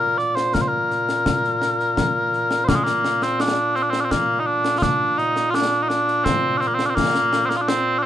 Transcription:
Already playing: bagpipes A#2 A#4
0.18 bagpipes D5, snare
0.35 bagpipes C5, snare
0.54 bagpipes A#4, concert bass drum, snare
0.61 bagpipes C5
0.68 bagpipes A#4
0.91 snare
1.09 snare
1.26 concert bass drum, snare
1.44 snare
1.62 snare
1.80 snare
1.97 concert bass drum, snare
2.33 snare
2.51 snare
2.64 bagpipes C5
2.69 bagpipes A#3, concert bass drum, snare
2.75 bagpipes G#3
2.84 bagpipes A#3, snare
3.05 snare
3.22 bagpipes C4, snare
3.40 bagpipes D4, snare
3.75 bagpipes C4, snare
3.82 bagpipes D4
3.90 bagpipes C4, snare
4.00 bagpipes D4
4.04 bagpipes C4
4.11 bagpipes A#3, concert bass drum, snare
4.40 bagpipes D#4
4.46 bagpipes D4
4.65 snare
4.78 bagpipes F4
4.82 bagpipes D4, concert bass drum, snare
5.18 bagpipes D#4, snare
5.36 snare
5.50 bagpipes F4
5.54 bagpipes D4, snare
5.72 snare
5.83 bagpipes D#4
5.88 bagpipes D4, snare
6.08 snare
6.24 bagpipes C4, concert bass drum, snare
6.57 bagpipes C4 D4
6.61 snare
6.67 bagpipes A#3
6.74 bagpipes C4
6.79 snare
6.85 bagpipes C4 D4
6.95 bagpipes A#3, concert bass drum, snare
7.15 snare
7.33 snare
7.46 bagpipes A#3 C4
7.51 snare
7.57 bagpipes F4
7.61 bagpipes D4
7.68 bagpipes C4, snare
7.98 bagpipes D4
8.02 bagpipes C4

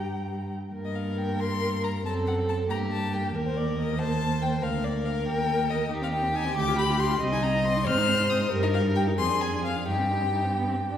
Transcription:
Already playing: cello G2, violin G5 A#5
0.73 cello G2, viola A#3, violin A#4
0.85 violin D#5
0.95 violin F5
1.18 violin G5
1.40 violin C6
1.84 violin A#5
2.05 cello F#2, viola C4, violin A4 A5
2.27 violin F#5
2.49 violin A5
2.70 cello G2, viola A#3, violin G4 A#5
2.92 violin A5
3.13 violin G5
3.35 cello D#2, violin A#4
3.46 violin C5
3.57 violin D5
3.77 violin D#5
3.99 violin C5 A5
4.41 violin G5
4.62 cello D2, violin A#4 F5
4.84 violin D5
5.05 violin F5
5.27 cello D#2, viola A#3, violin G5
5.70 violin D#5
5.91 cello D#2, viola D#4, violin G4
6.02 viola C4, violin F5
6.12 viola D#4, violin G5
6.23 viola C4
6.34 viola D#4, violin G#5
6.45 viola C4
6.56 cello D2, viola G4, violin D6
6.68 viola F4
6.78 viola G4, violin B5
6.89 viola F4
6.99 viola G4, violin C6
7.10 viola F4
7.21 cello C2, viola C4, violin D#5
7.32 viola D#4, violin G#5
7.42 viola C4, violin A#5
7.55 viola D#4
7.64 viola C4, violin C6
7.76 viola D#4
7.86 cello G#2, viola C4, violin C5 F6
7.98 viola D#4
8.09 viola C4
8.19 viola D#4
8.30 viola C4, violin D#6
8.41 viola D#4
8.51 cello G2, viola G4, violin A#4
8.63 viola D#4, violin D#5
8.74 viola G4, violin F5
8.85 viola D#4
8.95 viola G4, violin G5
9.07 viola D#4
9.18 cello F2, viola C4, violin G#4 C6
9.29 viola D4
9.41 viola C4, violin G#5
9.53 viola D4
9.64 viola C4, violin F5
9.76 viola D4
9.87 cello G2, viola D#4, violin G4 G5
9.99 viola C4
10.11 viola D#4
10.22 viola C4
10.33 viola D#4
10.45 viola C4
10.56 viola B3
10.68 viola C4
10.91 viola D4

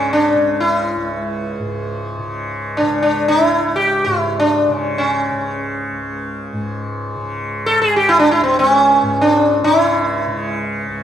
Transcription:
Already playing: tanpura C#2 G#2 C#3, sitar C#4
0.13 sitar D4
0.34 tanpura C#3
0.60 sitar E4
0.97 tanpura C#2
1.59 tanpura G#2
2.18 tanpura C#3
2.77 sitar D4
2.82 tanpura C#3
3.02 sitar D4
3.28 sitar E4
3.44 tanpura C#2
3.76 sitar G4
4.04 tanpura G#2, sitar E4
4.40 sitar D4
4.69 tanpura C#3, sitar C#4
4.98 sitar C#4
5.31 tanpura C#3
5.93 tanpura C#2
6.53 tanpura G#2
7.15 tanpura C#3
7.66 sitar A4
7.77 tanpura C#3
7.82 sitar G#4
7.96 sitar G4
8.09 sitar E4
8.19 sitar D4
8.31 sitar E4
8.41 tanpura C#2, sitar C4
8.59 sitar C4
8.71 sitar C#4
9.02 tanpura G#2
9.21 sitar D4
9.63 tanpura C#3, sitar E4
10.27 tanpura C#3
10.89 tanpura C#2

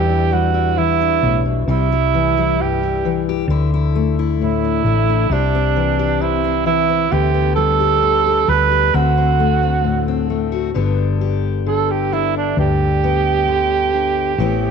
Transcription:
Already playing: steel-string acoustic guitar E2 G3 D4, fingered electric bass E2, tenor saxophone G4
0.10 steel-string acoustic guitar E4
0.32 steel-string acoustic guitar G3, tenor saxophone F#4
0.54 steel-string acoustic guitar E4
0.77 steel-string acoustic guitar E2, tenor saxophone E4
1.01 steel-string acoustic guitar D4
1.23 fingered electric bass B1, steel-string acoustic guitar A2
1.46 steel-string acoustic guitar B2
1.67 fingered electric bass C2, steel-string acoustic guitar C3 G3, tenor saxophone E4
1.92 steel-string acoustic guitar G3
2.14 steel-string acoustic guitar E3
2.38 steel-string acoustic guitar G3
2.60 steel-string acoustic guitar G2, tenor saxophone G4
2.83 steel-string acoustic guitar E4
3.05 steel-string acoustic guitar E3
3.29 steel-string acoustic guitar G4
3.48 fingered electric bass D2, steel-string acoustic guitar D3 E4
3.74 steel-string acoustic guitar E4
3.96 steel-string acoustic guitar A3
4.19 steel-string acoustic guitar E4
4.41 steel-string acoustic guitar A2, tenor saxophone E4
4.64 steel-string acoustic guitar D4
4.84 fingered electric bass A1, steel-string acoustic guitar A3
5.10 steel-string acoustic guitar D4
5.29 fingered electric bass C2, steel-string acoustic guitar C3 G4, tenor saxophone D4
5.55 steel-string acoustic guitar C4
5.76 steel-string acoustic guitar E3
5.99 steel-string acoustic guitar G4
6.21 steel-string acoustic guitar C3, tenor saxophone E4
6.44 steel-string acoustic guitar C4
6.66 steel-string acoustic guitar E3, tenor saxophone E4
6.90 steel-string acoustic guitar C4
7.12 fingered electric bass D2, steel-string acoustic guitar D3 B3, tenor saxophone G4
7.34 steel-string acoustic guitar B3
7.56 steel-string acoustic guitar G3, tenor saxophone A4
7.80 steel-string acoustic guitar G4
8.03 steel-string acoustic guitar D3
8.26 steel-string acoustic guitar G4
8.47 fingered electric bass D2, steel-string acoustic guitar G3, tenor saxophone B4
8.71 steel-string acoustic guitar G4
8.94 fingered electric bass D2, steel-string acoustic guitar D3 C4, tenor saxophone F#4
9.17 steel-string acoustic guitar C4
9.40 steel-string acoustic guitar A3
9.63 steel-string acoustic guitar C4
9.84 steel-string acoustic guitar A2
10.08 steel-string acoustic guitar C4
10.30 steel-string acoustic guitar A3
10.52 steel-string acoustic guitar F#4
10.74 fingered electric bass G1, steel-string acoustic guitar G2 D3 B3 D4 G4
11.21 steel-string acoustic guitar G4
11.66 steel-string acoustic guitar D3, tenor saxophone A4
11.90 tenor saxophone G4
12.13 steel-string acoustic guitar D4, tenor saxophone E4
12.37 tenor saxophone D4
12.57 fingered electric bass D2, steel-string acoustic guitar G2, tenor saxophone G4
13.04 steel-string acoustic guitar B3
13.48 steel-string acoustic guitar D3
13.93 steel-string acoustic guitar D4
14.38 fingered electric bass A1, steel-string acoustic guitar A2 E3 B3 C4 E4

